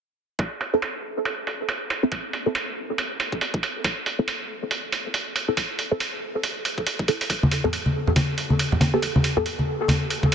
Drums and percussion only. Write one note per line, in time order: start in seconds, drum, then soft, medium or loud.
0.39 kick loud
0.39 closed hi-hat medium
0.61 closed hi-hat soft
0.82 closed hi-hat medium
1.25 closed hi-hat medium
1.47 closed hi-hat medium
1.69 closed hi-hat medium
1.90 closed hi-hat medium
2.12 kick loud
2.12 closed hi-hat medium
2.33 closed hi-hat medium
2.55 closed hi-hat medium
2.98 closed hi-hat medium
3.20 closed hi-hat medium
3.32 kick medium
3.41 closed hi-hat medium
3.54 kick loud
3.63 closed hi-hat medium
3.84 kick loud
3.84 closed hi-hat medium
4.06 closed hi-hat soft
4.28 closed hi-hat medium
4.71 closed hi-hat medium
4.92 closed hi-hat soft
5.14 closed hi-hat medium
5.36 closed hi-hat medium
5.57 kick loud
5.57 closed hi-hat medium
5.79 closed hi-hat soft
6.00 closed hi-hat medium
6.43 closed hi-hat medium
6.65 closed hi-hat soft
6.78 kick medium
6.87 closed hi-hat medium
6.99 kick loud
7.08 closed hi-hat soft
7.21 closed hi-hat soft
7.30 kick loud
7.30 closed hi-hat medium
7.43 high conga medium
7.51 closed hi-hat soft
7.65 low conga medium
7.73 closed hi-hat medium
7.86 high conga medium
8.07 low conga medium
8.16 closed hi-hat medium
8.16 high conga medium
8.38 closed hi-hat soft
8.50 high conga medium
8.59 closed hi-hat medium
8.72 low conga medium
8.81 closed hi-hat soft
8.81 high conga medium
9.02 kick loud
9.02 closed hi-hat medium
9.16 high conga medium
9.24 closed hi-hat soft
9.37 low conga medium
9.46 closed hi-hat medium
9.59 high conga medium
9.88 closed hi-hat medium
9.88 high conga medium
10.10 closed hi-hat soft
10.23 kick medium
10.23 high conga medium